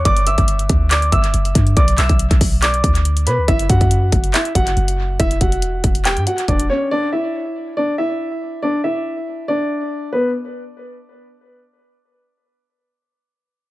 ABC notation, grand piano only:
X:1
M:4/4
L:1/8
Q:1/4=140
K:Edor
V:1 name="Grand piano"
[dd'] [ee']3 [dd'] [ee']3 | [dd'] [ee']3 [dd']3 [Bb] | [Ee] [Ff]3 [Ee] [Ff]3 | [Ee] [Ff]3 [Gg] [Ff] [Dd] [Cc] |
[Dd] [Ee]3 [Dd] [Ee]3 | [Dd] [Ee]3 [Dd]3 [B,B] | z8 | z8 |]